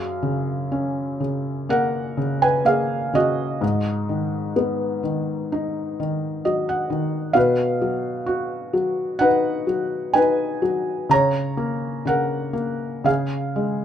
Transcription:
0.00 3.58 F#2 soft
0.00 1.67 G#4 soft
0.00 1.66 F5 medium
0.23 1.19 C#3 soft
0.72 2.62 C#4 soft
1.20 2.16 C#3 soft
1.69 2.63 A#3 soft
1.69 2.39 A#4 medium
1.69 2.45 F#5 medium
2.17 3.12 C#3 soft
2.42 2.65 B4 medium
2.42 2.65 G#5 medium
2.65 3.59 A#3 soft
2.65 3.11 G#4 medium
2.65 3.16 F5 medium
3.13 3.60 C#3 soft
3.13 4.53 F#4 medium
3.13 4.53 D#5 medium
3.61 7.31 G#2 medium
4.09 5.02 D#3 soft
4.56 6.41 B3 soft
5.03 5.98 D#3 soft
5.52 7.31 D#4 soft
6.00 6.88 D#3 soft
6.45 7.33 F#3 soft
6.45 6.66 D#5 medium
6.69 7.32 F#5 medium
6.90 7.34 D#3 soft
7.33 11.06 B2 medium
7.33 9.17 B4 medium
7.33 9.25 F5 medium
7.82 8.72 F#3 soft
8.26 10.11 F#4 medium
8.73 9.65 F#3 medium
9.19 10.14 D#4 medium
9.19 10.12 B4 medium
9.19 10.18 F#5 medium
9.67 10.60 F#3 soft
10.13 11.07 D#4 medium
10.13 11.07 B4 medium
10.13 11.12 G#5 medium
10.62 11.09 F#3 soft
11.09 12.04 C#3 medium
11.09 12.04 C#5 medium
11.09 12.02 A#5 medium
11.57 12.52 A#3 soft
12.05 13.02 C#3 soft
12.05 13.03 A#4 medium
12.05 13.09 F#5 medium
12.53 13.03 A#3 soft
13.04 13.85 C#3 medium
13.04 13.85 G#4 medium
13.04 13.85 F5 medium
13.56 13.85 G#3 soft

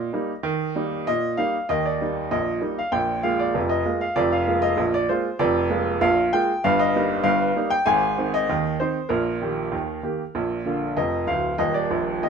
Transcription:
0.00 1.06 D#5 medium
0.13 0.30 G3 soft
0.13 0.31 A#3 soft
0.13 0.31 D#4 soft
0.43 0.71 D#3 medium
0.75 0.93 G3 soft
0.75 0.93 A#3 medium
0.75 0.93 D#4 medium
1.07 1.34 A#2 medium
1.07 1.39 D#5 medium
1.37 1.55 G3 soft
1.37 1.56 A#3 soft
1.37 1.56 D#4 medium
1.37 1.69 F5 medium
1.69 1.96 D#2 medium
1.69 1.96 D#3 medium
1.69 1.85 D#5 medium
1.86 2.32 D5 medium
2.01 2.18 G3 soft
2.01 2.19 A#3 soft
2.01 2.19 D#4 soft
2.31 2.58 A#1 medium
2.31 2.58 A#2 medium
2.31 2.78 D#5 medium
2.61 2.78 G3 soft
2.61 2.79 A#3 soft
2.61 2.79 D#4 soft
2.79 2.94 F5 medium
2.92 3.19 A#1 medium
2.92 3.19 A#2 medium
2.92 3.24 G5 medium
3.23 3.41 G#3 soft
3.23 3.42 A#3 soft
3.23 3.41 F4 soft
3.23 3.39 F5 medium
3.39 3.71 D5 medium
3.54 3.81 F1 medium
3.54 3.82 F2 medium
3.69 4.01 D#5 medium
3.86 4.03 G#3 soft
3.86 4.03 A#3 soft
3.86 4.03 F4 soft
4.01 4.17 F5 medium
4.16 4.43 F1 medium
4.16 4.43 F2 medium
4.16 4.32 D5 medium
4.32 4.63 F5 medium
4.47 4.64 G#3 soft
4.47 4.64 A#3 soft
4.47 4.65 F4 medium
4.62 4.94 D#5 medium
4.77 5.04 A#1 medium
4.77 5.05 A#2 medium
4.94 5.10 D5 medium
5.09 5.27 G#3 soft
5.09 5.27 A#3 soft
5.09 5.27 F4 medium
5.09 5.40 C5 medium
5.39 5.66 F1 medium
5.39 5.66 F2 medium
5.39 6.01 D5 medium
5.70 5.87 G#3 medium
5.70 5.87 A#3 soft
5.70 5.88 F4 medium
6.01 6.28 A#1 medium
6.01 6.28 A#2 medium
6.01 6.32 F5 medium
6.33 6.50 G#3 medium
6.33 6.50 A#3 soft
6.33 6.51 F4 soft
6.33 6.64 G5 medium
6.64 6.90 G1 medium
6.64 6.90 G2 medium
6.64 6.79 F5 medium
6.79 7.25 D#5 medium
6.96 7.12 G3 medium
6.96 7.12 A#3 soft
6.96 7.12 D#4 medium
7.23 7.50 G1 medium
7.23 7.50 G2 medium
7.23 7.70 F5 medium
7.56 7.73 G3 soft
7.56 7.73 A#3 medium
7.56 7.73 D#4 medium
7.70 7.86 G5 medium
7.86 8.12 G#1 medium
7.86 8.13 G#2 medium
7.86 8.32 G#5 loud
8.18 8.35 D#3 medium
8.18 8.35 C4 soft
8.18 8.35 D#4 soft
8.34 8.80 D#5 medium
8.49 8.75 D#2 medium
8.49 8.75 D#3 medium
8.80 8.97 D#3 soft
8.80 8.97 C4 soft
8.80 8.98 D#4 medium
8.80 9.11 C5 medium
9.09 9.36 A#1 medium
9.09 9.36 A#2 medium
9.09 10.96 A#4 medium
9.42 9.59 D#3 soft
9.42 9.59 A#3 soft
9.42 9.59 G4 soft
9.72 9.99 D#2 medium
9.72 9.99 D#3 medium
10.03 10.20 D#3 soft
10.03 10.21 A#3 soft
10.03 10.21 G4 soft
10.35 10.61 A#1 medium
10.35 10.61 A#2 medium
10.66 10.83 D3 soft
10.66 10.83 A#3 soft
10.66 10.83 F4 soft
10.97 11.23 F1 medium
10.97 11.24 F2 medium
10.97 11.28 D#5 medium
11.27 11.52 D1 medium
11.27 11.53 D2 medium
11.27 11.59 F5 medium
11.58 11.84 D#1 medium
11.58 11.84 D#2 medium
11.58 11.74 D#5 medium
11.74 12.21 D5 medium
11.91 12.16 A#1 medium
12.23 12.29 D#3 soft
12.23 12.29 A#3 soft
12.23 12.29 G4 soft
12.23 12.29 D#5 medium

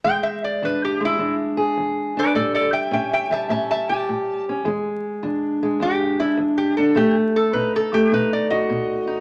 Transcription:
0.04 0.58 E2 medium
0.04 0.99 G#3 soft
0.04 0.23 G5 medium
0.23 0.42 E5 medium
0.44 0.62 D5 medium
0.62 1.16 E2 medium
0.62 1.18 D4 soft
0.62 0.82 B4 medium
0.85 1.01 G4 medium
1.00 2.32 G#3 soft
1.05 1.34 E4 medium
1.18 1.72 E2 medium
1.18 2.15 D4 soft
1.57 2.32 G#4 medium
1.77 2.31 E2 medium
2.17 2.33 D4 soft
2.17 2.35 B4 medium
2.17 2.35 D5 medium
2.35 2.89 A2 medium
2.35 3.30 G3 soft
2.35 2.53 A4 medium
2.35 2.54 D5 medium
2.54 2.72 A4 medium
2.54 2.73 D5 medium
2.73 2.91 E5 medium
2.73 2.92 G5 medium
2.91 3.46 A2 medium
2.91 3.48 C#4 soft
2.91 3.11 E5 medium
2.91 3.11 G5 medium
3.13 3.30 E5 medium
3.13 3.31 G5 medium
3.31 4.65 G3 soft
3.31 3.49 E5 medium
3.31 3.50 A5 medium
3.49 4.03 A2 medium
3.49 4.46 C#4 medium
3.49 3.68 E5 medium
3.49 3.69 A5 medium
3.71 3.88 E5 medium
3.71 3.88 A5 medium
3.89 4.64 G4 medium
3.89 4.45 A5 medium
4.09 4.62 A2 medium
4.49 4.64 C#4 soft
4.65 5.19 E2 medium
4.65 5.61 G#3 medium
5.23 5.77 E2 medium
5.23 5.80 D4 soft
5.63 6.94 G#3 soft
5.80 6.34 E2 medium
5.80 6.19 D4 soft
5.80 6.19 G4 medium
6.20 6.77 D4 soft
6.20 6.38 E4 medium
6.37 6.91 E2 medium
6.58 6.76 G4 medium
6.77 6.94 D4 soft
6.77 6.95 A4 medium
6.95 7.49 B2 medium
6.95 7.92 A3 medium
6.95 7.15 G4 medium
7.36 7.54 A4 medium
7.53 8.07 B2 medium
7.53 8.11 D#4 medium
7.53 7.72 B4 medium
7.76 7.93 A4 medium
7.93 9.20 A3 soft
7.93 8.11 G4 medium
8.12 8.65 B2 medium
8.12 9.06 D#4 soft
8.12 8.31 B4 medium
8.33 8.50 D5 medium
8.50 9.20 F#4 medium
8.50 9.20 D#5 medium
8.70 9.20 B2 medium
9.07 9.20 D#4 medium

